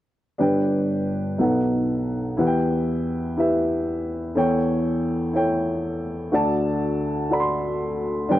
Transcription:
0.38 G1 G2 D4 G4 B4 G5
1.38 B1 B2 D#4 A4 B4 F#5
2.37 E2 E3 E4 G4 B4 F#5
2.47 G5
3.37 E4 G4 B4 E5
4.35 E2 E3 E4 A4 C#5 G5
5.33 E4 A4 C#5 G5
6.32 D2 D3 F#4 A4 D5 A5
7.30 F#4 A4 D5 B5
7.40 C6
8.29 G1 G2 D4 G4 B4 G5

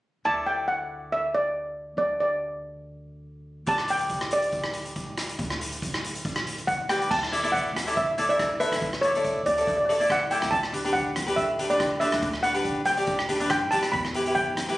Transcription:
0.25 D2 E4 A4 D5 A5
0.46 G5
0.68 F#5
1.12 E5
1.35 D5
1.97 D2 D5
2.20 D5
3.67 D2 G4 B4 D5 A5, kick, closed hi-hat
3.78 cross-stick
3.88 G5, closed hi-hat
3.99 closed hi-hat
4.09 kick, closed hi-hat
4.21 cross-stick
4.31 D5, closed hi-hat
4.42 closed hi-hat
4.52 kick, closed hi-hat
4.64 cross-stick
4.74 closed hi-hat
4.85 closed hi-hat
4.96 kick, closed hi-hat
5.18 cross-stick, closed hi-hat
5.29 closed hi-hat
5.39 D2, kick, closed hi-hat
5.50 cross-stick
5.61 closed hi-hat
5.72 closed hi-hat
5.82 kick, closed hi-hat
5.94 cross-stick
6.04 closed hi-hat
6.15 closed hi-hat
6.25 kick, closed hi-hat
6.36 cross-stick
6.47 closed hi-hat
6.58 closed hi-hat
6.67 F#5, kick, closed hi-hat
6.89 G4 B4 D5 G5, cross-stick, closed hi-hat
7.01 closed hi-hat
7.11 D2 A5, kick, crash
7.23 cross-stick
7.32 E4 A4 D5, closed hi-hat
7.43 E4 A4 D5, closed hi-hat
7.52 F#5, kick, closed hi-hat
7.76 D2, cross-stick, closed hi-hat
7.87 E4 A4 D5, closed hi-hat
7.97 E5, kick, closed hi-hat
8.18 E4 A4 D5, closed hi-hat
8.29 E4 A4 D5 E5, closed hi-hat
8.39 kick, cross-stick, closed hi-hat
8.60 E4 A4 B4 E5, closed hi-hat
8.72 D2, cross-stick, closed hi-hat
8.82 D2, kick, closed hi-hat
8.93 cross-stick
9.01 E4 A4 C#5 D5, closed hi-hat
9.15 E4 A4 D5, closed hi-hat
9.24 kick, closed hi-hat
9.46 D2 D5, closed hi-hat
9.54 D5, closed hi-hat
9.58 E4 A4 D5
9.67 D5, kick, closed hi-hat
9.77 D5
9.86 A4 D5
9.90 E4 D5, closed hi-hat
10.00 E4 A4 D5, closed hi-hat
10.10 F#5, kick, cross-stick, closed hi-hat
10.31 E4 A4 D5 G5, closed hi-hat
10.42 D2, cross-stick, closed hi-hat
10.51 D2 A5, kick, closed hi-hat
10.63 cross-stick
10.73 D4 G4 B4, closed hi-hat
10.85 D4 G4 B4, closed hi-hat
10.93 F#5, kick, closed hi-hat
11.16 D2, cross-stick, closed hi-hat
11.27 D4 G4 B4, closed hi-hat
11.36 E5, kick, closed hi-hat
11.59 D4 G4 B4, closed hi-hat
11.70 D4 G4 B4 D5, closed hi-hat
11.80 kick, cross-stick, closed hi-hat
12.00 D4 G4 B4 E5, closed hi-hat
12.12 D2, cross-stick, closed hi-hat
12.23 D2, kick, closed hi-hat
12.34 cross-stick
12.43 D4 G4 B4 F#5, closed hi-hat
12.54 D4 G4 B4, closed hi-hat
12.65 kick, closed hi-hat
12.85 D2 G5, closed hi-hat
12.97 D4 G4 D5, closed hi-hat
13.07 kick, closed hi-hat
13.19 cross-stick
13.29 D4 G4 B4, closed hi-hat
13.40 D4 G4 B4, closed hi-hat
13.50 F#2 G5, kick, cross-stick, closed hi-hat
13.71 E2 D4 G4 B4 A5, closed hi-hat
13.83 cross-stick, closed hi-hat
13.92 E2 B5, kick, closed hi-hat
14.05 cross-stick
14.14 E4 G4 B4, closed hi-hat
14.26 E4 G4 B4, closed hi-hat
14.35 G5, kick, closed hi-hat
14.57 E2, cross-stick, closed hi-hat
14.68 E4 G4 B4, closed hi-hat

